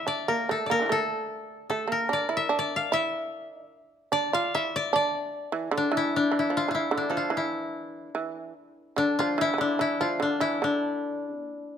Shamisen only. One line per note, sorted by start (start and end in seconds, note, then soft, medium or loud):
0.07 0.26 D4 medium
0.28 0.47 A#3 medium
0.49 0.67 A3 medium
0.70 0.86 A#3 medium
0.80 0.92 D3 soft
0.80 0.95 E3 soft
0.86 0.89 F3 soft
0.86 1.66 A3 medium
1.70 1.87 A3 medium
1.88 2.08 A#3 medium
2.09 2.28 D4 medium
2.29 2.49 E4 medium
2.49 2.88 D4 medium
2.92 3.52 E4 medium
3.52 3.66 D#4 medium
3.66 4.08 D4 medium
4.12 4.31 D4 medium
4.33 4.51 F4 medium
4.55 4.91 E4 medium
4.93 5.48 D4 medium
5.52 5.71 E3 medium
5.71 5.90 D3 medium
5.92 6.29 E3 medium
6.31 6.50 E3 medium
6.50 6.69 F3 medium
6.68 6.89 E3 medium
6.91 7.10 D3 medium
7.11 7.30 F3 medium
7.30 8.09 E3 medium
8.15 8.53 E3 medium
8.96 9.15 D3 medium
9.20 9.38 F3 medium
9.38 9.52 E3 medium
9.54 9.58 E3 soft
9.58 9.77 D3 medium
9.79 9.98 E3 medium
10.01 10.20 F3 medium
10.20 10.40 D3 medium
10.40 10.61 E3 medium
10.62 11.48 D3 medium
11.48 11.78 A#2 medium